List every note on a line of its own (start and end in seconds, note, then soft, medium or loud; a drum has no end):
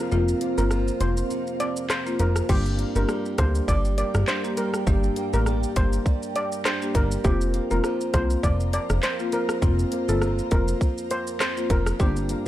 0.00 0.10 F2 medium
0.00 1.29 C3 medium
0.00 0.70 F3 medium
0.00 0.41 A#3 medium
0.00 1.59 C4 medium
0.00 2.45 C4 medium
0.00 2.45 F4 medium
0.00 2.45 A#4 medium
0.00 2.45 F5 medium
0.12 0.34 F1 loud
0.12 2.49 F2 medium
0.12 0.30 A#3 medium
0.12 0.30 C4 medium
0.12 0.30 F4 loud
0.12 shaker medium
0.28 shaker medium
0.41 1.00 A#3 medium
0.41 closed hi-hat medium
0.41 shaker medium
0.58 0.91 G1 medium
0.58 0.73 A#3 medium
0.58 0.73 C4 medium
0.58 0.73 F4 medium
0.58 0.66 A#4 medium
0.58 shaker medium
0.71 2.18 F3 medium
0.71 cross-stick medium
0.71 shaker medium
0.88 shaker medium
1.01 1.23 F1 medium
1.01 1.19 A#3 medium
1.01 1.19 C4 medium
1.01 1.19 F4 medium
1.01 1.11 C5 medium
1.01 closed hi-hat medium
1.01 shaker medium
1.17 shaker medium
1.30 2.56 C3 medium
1.30 shaker medium
1.47 shaker medium
1.60 2.50 C4 medium
1.60 1.70 D5 medium
1.60 closed hi-hat medium
1.60 shaker medium
1.77 shaker medium
1.90 2.79 A#3 medium
1.90 2.00 C5 medium
1.90 cross-stick loud
1.90 clap loud
1.90 shaker medium
2.06 2.21 A#3 medium
2.06 2.22 C4 medium
2.06 2.22 F4 medium
2.06 shaker medium
2.19 2.42 F1 medium
2.19 2.56 F3 medium
2.19 2.30 A#4 medium
2.19 closed hi-hat medium
2.19 shaker medium
2.36 cross-stick medium
2.36 shaker medium
2.49 2.85 G1 loud
2.49 4.86 G2 medium
2.49 2.67 A#3 medium
2.49 7.21 D4 medium
2.49 2.67 D4 medium
2.49 4.26 D4 medium
2.49 7.21 G4 medium
2.49 2.60 G4 medium
2.49 2.68 G4 loud
2.49 12.48 A#4 medium
2.49 7.21 G5 medium
2.49 kick loud
2.49 crash loud
2.49 shaker medium
2.66 shaker medium
2.79 3.38 A#3 medium
2.79 closed hi-hat medium
2.79 shaker soft
2.95 3.06 G1 medium
2.95 3.10 A#3 medium
2.95 3.11 D4 medium
2.95 3.11 G4 medium
2.95 3.04 A#4 medium
2.95 shaker medium
3.09 3.67 G3 medium
3.09 cross-stick medium
3.09 shaker medium
3.26 shaker medium
3.38 3.61 D2 loud
3.38 3.56 A#3 medium
3.38 3.97 A#3 medium
3.38 3.57 D4 medium
3.38 3.57 G4 medium
3.38 3.49 C5 medium
3.38 kick loud
3.38 cross-stick loud
3.38 closed hi-hat medium
3.38 shaker medium
3.55 shaker medium
3.68 4.04 G1 loud
3.68 4.56 G3 medium
3.68 3.78 D5 medium
3.68 kick medium
3.68 shaker medium
3.85 shaker medium
3.98 5.16 A#3 medium
3.98 4.08 D5 medium
3.98 closed hi-hat medium
3.98 shaker medium
4.14 4.24 G1 loud
4.14 cross-stick loud
4.14 shaker medium
4.27 4.86 D4 medium
4.27 4.38 C5 medium
4.27 clap loud
4.27 shaker medium
4.44 4.59 A#3 medium
4.44 4.59 D4 medium
4.44 4.59 G4 medium
4.44 shaker medium
4.57 5.45 G3 medium
4.57 4.68 A#4 medium
4.57 closed hi-hat medium
4.57 shaker medium
4.74 cross-stick medium
4.74 shaker medium
4.87 5.10 G1 loud
4.87 7.24 G2 medium
4.87 5.05 A#3 medium
4.87 5.05 D4 medium
4.87 6.64 D4 medium
4.87 5.05 G4 loud
4.87 kick loud
4.87 shaker medium
5.04 shaker medium
5.16 5.75 A#3 medium
5.16 closed hi-hat medium
5.16 shaker medium
5.33 5.66 A1 medium
5.33 5.48 A#3 medium
5.33 5.48 D4 medium
5.33 5.48 G4 medium
5.33 5.42 A#4 medium
5.33 shaker medium
5.46 6.04 G3 medium
5.46 cross-stick medium
5.46 shaker medium
5.63 shaker medium
5.76 5.99 G1 loud
5.76 6.35 A#3 medium
5.76 5.94 A#3 medium
5.76 5.94 D4 medium
5.76 5.94 G4 medium
5.76 5.87 C5 medium
5.76 kick loud
5.76 closed hi-hat medium
5.76 shaker medium
5.93 shaker medium
6.06 6.94 G3 medium
6.06 kick medium
6.06 shaker medium
6.23 shaker medium
6.35 7.54 A#3 medium
6.35 6.46 D5 medium
6.35 closed hi-hat medium
6.35 shaker medium
6.52 shaker medium
6.65 7.25 D4 medium
6.65 6.75 C5 medium
6.65 cross-stick loud
6.65 clap loud
6.65 shaker medium
6.82 6.97 A#3 medium
6.82 6.97 D4 medium
6.82 6.97 G4 medium
6.82 shaker medium
6.95 7.18 G1 medium
6.95 7.31 G3 medium
6.95 7.05 A#4 medium
6.95 kick loud
6.95 closed hi-hat medium
6.95 shaker medium
7.11 shaker medium
7.24 7.60 F1 loud
7.24 9.61 F2 medium
7.24 7.43 A#3 medium
7.24 7.43 C4 medium
7.24 9.02 C4 medium
7.24 11.96 F4 medium
7.24 7.43 F4 loud
7.24 7.35 G4 medium
7.24 11.96 C5 medium
7.24 11.96 A#5 loud
7.24 kick loud
7.24 shaker medium
7.41 shaker medium
7.54 8.13 A#3 medium
7.54 closed hi-hat medium
7.54 shaker medium
7.71 7.81 F1 medium
7.71 7.86 A#3 medium
7.71 7.86 C4 medium
7.71 7.86 F4 medium
7.71 7.79 A#4 medium
7.71 shaker medium
7.84 8.42 F3 medium
7.84 cross-stick medium
7.84 shaker medium
8.01 shaker medium
8.14 8.37 C2 loud
8.14 8.32 A#3 medium
8.14 8.73 A#3 medium
8.14 8.32 C4 medium
8.14 8.32 F4 medium
8.14 8.24 C5 medium
8.14 kick loud
8.14 cross-stick loud
8.14 closed hi-hat medium
8.14 shaker medium
8.30 shaker medium
8.43 8.79 F1 loud
8.43 9.31 F3 medium
8.43 8.54 D5 medium
8.43 kick loud
8.43 shaker medium
8.60 shaker medium
8.73 9.91 A#3 medium
8.73 8.84 D5 medium
8.73 closed hi-hat medium
8.73 shaker medium
8.90 9.00 F1 medium
8.90 cross-stick loud
8.90 shaker medium
9.03 9.62 C4 medium
9.03 9.13 C5 medium
9.03 clap loud
9.03 shaker medium
9.19 9.34 A#3 medium
9.19 9.34 C4 medium
9.19 9.35 F4 medium
9.19 shaker medium
9.32 10.20 F3 medium
9.32 9.43 A#4 medium
9.32 closed hi-hat medium
9.32 shaker medium
9.49 cross-stick loud
9.49 shaker medium
9.62 9.85 F1 loud
9.62 11.99 F2 medium
9.62 9.80 A#3 loud
9.62 9.80 C4 medium
9.62 11.39 C4 medium
9.62 9.80 F4 loud
9.62 kick loud
9.62 shaker medium
9.79 shaker medium
9.92 10.51 A#3 medium
9.92 closed hi-hat medium
9.92 shaker soft
10.08 10.41 G1 medium
10.08 10.23 A#3 medium
10.08 10.23 C4 medium
10.08 10.24 F4 medium
10.08 10.17 A4 medium
10.08 shaker medium
10.22 10.80 F3 medium
10.22 cross-stick medium
10.22 shaker medium
10.39 shaker medium
10.51 10.74 F1 medium
10.51 10.69 A#3 medium
10.51 11.10 A#3 medium
10.51 10.70 C4 medium
10.51 10.70 F4 medium
10.51 10.62 A#4 medium
10.51 kick loud
10.51 closed hi-hat medium
10.51 shaker medium
10.68 shaker medium
10.81 11.69 F3 medium
10.81 kick medium
10.81 shaker medium
10.98 shaker medium
11.11 12.29 A#3 medium
11.11 11.21 C5 medium
11.11 closed hi-hat medium
11.11 shaker medium
11.27 shaker medium
11.40 12.00 C4 medium
11.40 11.51 C5 medium
11.40 cross-stick loud
11.40 clap loud
11.40 shaker medium
11.57 11.72 A#3 medium
11.57 11.72 C4 medium
11.57 11.72 F4 medium
11.57 shaker medium
11.70 11.93 F1 medium
11.70 12.06 F3 medium
11.70 11.81 A#4 medium
11.70 kick loud
11.70 closed hi-hat medium
11.70 shaker medium
11.86 cross-stick loud
11.86 shaker medium
11.99 12.35 G1 loud
11.99 12.48 G2 medium
11.99 12.18 A#3 medium
11.99 12.18 D4 medium
11.99 12.48 D4 medium
11.99 12.48 G4 medium
11.99 12.18 G4 loud
11.99 12.10 G4 medium
11.99 12.48 D5 medium
11.99 12.48 A#5 medium
11.99 kick loud
11.99 shaker medium
12.16 shaker medium
12.29 12.48 A#3 medium
12.29 closed hi-hat medium
12.29 shaker medium